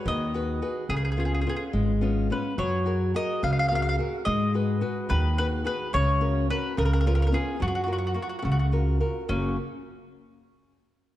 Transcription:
0.00 0.23 F#4 soft
0.00 0.23 G#4 soft
0.00 0.24 B4 medium
0.05 0.60 D#2 medium
0.05 0.60 D#3 medium
0.05 0.87 D#5 medium
0.34 0.61 F#4 medium
0.34 0.61 G#4 soft
0.34 0.61 B4 medium
0.62 0.84 F#4 soft
0.62 0.84 G#4 soft
0.62 0.84 B4 medium
0.89 1.44 C#2 medium
0.89 1.44 C#3 medium
0.89 0.95 G#4 medium
0.97 1.04 G#4 soft
1.05 1.10 G#4 medium
1.12 1.18 G#4 soft
1.17 1.45 B3 soft
1.17 1.46 C#4 soft
1.17 1.46 F4 medium
1.17 1.24 G#4 soft
1.25 1.33 G#4 soft
1.34 1.40 G#4 soft
1.41 1.48 G#4 soft
1.47 1.92 B3 soft
1.47 1.92 C#4 soft
1.47 1.92 F4 soft
1.47 1.55 G#4 medium
1.56 1.64 G#4 medium
1.73 2.29 G#1 medium
1.73 2.29 G#3 medium
2.01 2.29 B3 soft
2.01 2.30 C#4 soft
2.01 2.30 F4 soft
2.30 2.52 B3 soft
2.30 2.53 C#4 soft
2.30 2.54 F4 soft
2.30 2.57 B4 medium
2.58 3.13 F#2 medium
2.58 3.13 F#3 medium
2.58 3.11 C#5 medium
2.86 3.13 F#4 soft
2.86 3.14 G#4 soft
2.86 3.14 A#4 soft
3.14 3.60 F#4 soft
3.14 3.60 G#4 soft
3.14 3.60 A#4 medium
3.14 3.41 D#5 medium
3.43 3.97 C#2 medium
3.43 3.97 C#3 medium
3.43 3.50 F5 medium
3.53 3.58 F5 medium
3.59 3.66 F5 medium
3.68 3.97 F#4 medium
3.68 3.98 G#4 soft
3.68 3.99 A#4 medium
3.68 3.74 F5 medium
3.75 3.81 F5 medium
3.82 3.88 F5 medium
3.89 3.95 F5 medium
3.98 4.21 F#4 soft
3.98 4.21 G#4 soft
3.98 4.21 A#4 medium
4.25 4.81 G#2 medium
4.25 4.80 G#3 medium
4.25 5.05 D#5 medium
4.54 4.80 F#4 soft
4.54 4.80 G#4 soft
4.54 4.81 B4 medium
4.81 5.26 F#4 soft
4.81 5.26 G#4 soft
4.81 5.27 B4 medium
5.09 5.65 D#2 loud
5.09 5.64 D#3 medium
5.09 5.37 B4 medium
5.38 5.63 F#4 soft
5.38 5.64 G#4 soft
5.38 5.46 B4 medium
5.38 5.64 B4 medium
5.64 5.87 F#4 soft
5.64 5.88 G#4 soft
5.64 5.88 B4 medium
5.64 5.92 B4 medium
5.93 6.48 C#2 loud
5.93 6.48 C#3 medium
5.93 6.46 C#5 loud
6.21 6.49 C#4 soft
6.21 6.49 F#4 soft
6.21 6.50 A#4 soft
6.50 6.72 C#4 medium
6.50 6.72 F#4 soft
6.50 6.72 A#4 medium
6.50 6.78 B4 medium
6.77 7.32 C#2 loud
6.77 7.32 C#3 medium
6.77 6.84 A#4 medium
6.85 6.92 A#4 medium
6.93 6.99 A#4 medium
7.01 7.06 A#4 medium
7.06 7.31 B3 soft
7.06 7.31 C#4 soft
7.06 7.32 F4 medium
7.06 7.14 A#4 medium
7.15 7.21 A#4 medium
7.22 7.26 A#4 medium
7.27 7.33 A#4 medium
7.32 7.54 B3 soft
7.32 7.54 C#4 soft
7.32 7.55 F4 medium
7.32 7.62 G#4 medium
7.60 8.16 F#2 medium
7.60 8.15 F#3 medium
7.60 7.66 F#4 medium
7.68 7.74 F#4 soft
7.75 7.82 F#4 medium
7.84 8.14 F4 soft
7.84 7.90 F#4 soft
7.84 8.14 F#4 soft
7.88 8.14 A#4 soft
7.93 7.97 F#4 medium
7.98 8.05 F#4 soft
8.07 8.13 F#4 soft
8.14 8.61 F4 soft
8.14 8.20 F#4 soft
8.14 8.61 F#4 soft
8.14 8.61 A#4 soft
8.22 8.28 F#4 medium
8.29 8.35 F#4 soft
8.39 8.98 C#3 medium
8.39 8.44 F#4 soft
8.45 9.00 C#2 medium
8.45 8.50 F#4 soft
8.52 8.58 F#4 medium
8.59 8.66 F#4 soft
8.72 8.99 F4 soft
8.72 8.99 F#4 soft
8.72 9.00 A#4 medium
9.00 9.23 F4 soft
9.00 9.23 F#4 soft
9.00 9.23 A#4 medium
9.29 9.56 F#1 medium
9.29 9.55 F#2 medium
9.29 9.55 C#3 soft
9.29 9.56 F#3 soft
9.29 9.56 A#3 medium
9.29 9.56 C#4 medium

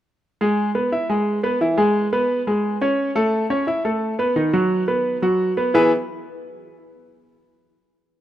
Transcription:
0.41 0.69 G#3 medium
0.41 0.69 G#4 medium
0.75 0.89 B3 medium
0.75 0.89 B4 medium
0.92 1.06 E4 medium
0.92 1.06 E5 medium
1.10 1.38 G#3 medium
1.10 1.38 G#4 medium
1.43 1.58 B3 medium
1.43 1.58 B4 medium
1.61 1.75 E3 medium
1.61 1.75 E4 medium
1.78 2.06 G#3 medium
1.78 2.06 G#4 medium
2.13 2.41 B3 medium
2.13 2.41 B4 medium
2.47 2.75 G#3 medium
2.47 2.75 G#4 medium
2.81 3.09 C#4 medium
2.81 3.10 C#5 medium
3.15 3.44 A3 medium
3.15 3.44 A4 medium
3.50 3.64 C#4 medium
3.50 3.64 C#5 medium
3.67 3.81 E4 medium
3.67 3.82 E5 medium
3.85 4.13 A3 medium
3.85 4.13 A4 medium
4.19 4.33 B3 medium
4.19 4.33 B4 medium
4.36 4.50 D#3 medium
4.36 4.50 D#4 medium
4.53 4.82 F#3 medium
4.53 4.82 F#4 medium
4.88 5.16 B3 medium
4.88 5.16 B4 medium
5.22 5.51 F#3 medium
5.22 5.51 F#4 medium
5.57 5.71 B3 medium
5.57 5.71 B4 medium
5.74 5.90 E3 medium
5.74 5.91 B3 medium
5.74 5.91 E4 medium
5.74 5.91 G#4 medium
5.74 5.91 B4 medium
5.74 5.91 E5 medium

